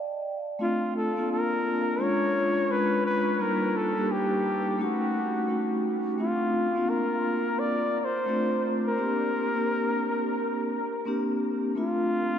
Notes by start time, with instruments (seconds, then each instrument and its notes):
Already playing: vibraphone D5
0.59 vibraphone A3 C4 D4 F4, flugelhorn F4
0.97 flugelhorn A4
1.17 vibraphone A#3 C4 D4 F4
1.32 flugelhorn A#4
1.98 vibraphone G#3 C#4 D4 F4, flugelhorn C#5
2.68 vibraphone G#3 C#4 D4 F4, flugelhorn B4
3.06 flugelhorn B4
3.38 vibraphone G3 A#3 D4 D#4 F4, flugelhorn A#4
3.77 flugelhorn A4
3.97 vibraphone G3 A#3 D4 D#4 G4
4.12 flugelhorn G4
4.78 vibraphone A3 C#4 D#4 F#4
4.83 flugelhorn F#4
5.48 vibraphone A3 C#4 D#4 F#4
6.18 vibraphone A3 C4 D4 F4, flugelhorn F4
6.75 vibraphone A#3 C4 D4 F4
6.90 flugelhorn A#4
7.59 flugelhorn D5
8.01 flugelhorn D5
8.05 flugelhorn C5
8.26 vibraphone A3 C4 D4 F4
8.87 flugelhorn A#4
8.96 vibraphone A#3 C4 D4 G4
9.54 vibraphone A#3 C4 D4 G4
11.05 vibraphone A#3 C4 D4 G4
11.75 vibraphone A3 C4 D4 F4, flugelhorn F4